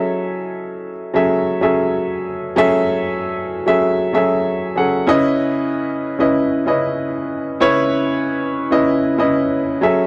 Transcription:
\new Staff \with { instrumentName = "Grand piano" } { \time 4/4 \key cis \minor \tempo 4 = 95 <fis cis' gis' a' e''>4~ <fis cis' gis' a' e''>16 r8 <fis cis' gis' a' e''>8. <fis cis' gis' a' e''>4. | <fis cis' gis' a' e''>4.~ <fis cis' gis' a' e''>16 <fis cis' gis' a' e''>8. <fis cis' gis' a' e''>4 <fis cis' gis' a' fis''>8 | <cis cis' e' b' dis''>4.~ <cis cis' e' b' dis''>16 <cis cis' e' b' dis''>8. <cis cis' e' b' dis''>4. | <cis cis' e' b' cis''>4.~ <cis cis' e' b' cis''>16 <cis cis' e' b' dis''>8. <cis cis' e' b' dis''>4 <fis cis' gis' a' e''>8 | }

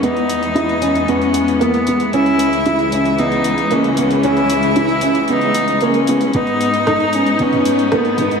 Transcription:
<<
  \new Staff \with { instrumentName = "Cello" } { \time 4/4 \key cis \dorian \tempo 4 = 114 dis'2 cis'4 b4 | e'2 dis'4 cis'4 | e'2 dis'4 cis'4 | dis'2 cis'4 b4 | }
  \new Staff \with { instrumentName = "Felt piano" } { \time 4/4 \key cis \dorian b4 e'8 cis'8 b4 ais8 b8 | cis'4 e'8 cis'8 b4 ais8 b8 | cis'4 e'8 cis'8 b4 ais8 b8 | b4 dis'8 cis'8 b4 ais8 b8 | }
  \new Staff \with { instrumentName = "String section" } { \clef bass \time 4/4 \key cis \dorian << { <e, e b>1 | <cis, cis e>1~ | <cis, cis e>1 | <gis, dis'>1 | } \\ { gis1~ | gis1~ | gis1 | b1 | } >> }
  \new DrumStaff \with { instrumentName = "Drums" } \drummode { \time 4/4 hh16 hh16 hh16 hh16 hh16 hh16 hh16 hh16 hh16 hh16 hh16 hh16 hh16 hh16 hh16 hh16 | hh16 hh16 hh16 hh16 hh16 hh16 hh16 hh16 hh16 hh16 hh16 hh16 hh16 hh16 hh16 hh16 | hh16 hh16 hh16 hh16 hh16 hh16 hh16 hh16 hh16 hh16 hh16 hh16 hh16 hh16 hh16 hh16 | <hh bd>16 hh16 hh16 hh16 <hh bd ss toml>16 hh16 hh16 hh16 <hh bd>16 <hh toml>16 hh16 hh16 <hh bd ss>16 hh16 <hh toml>16 hh16 | }
>>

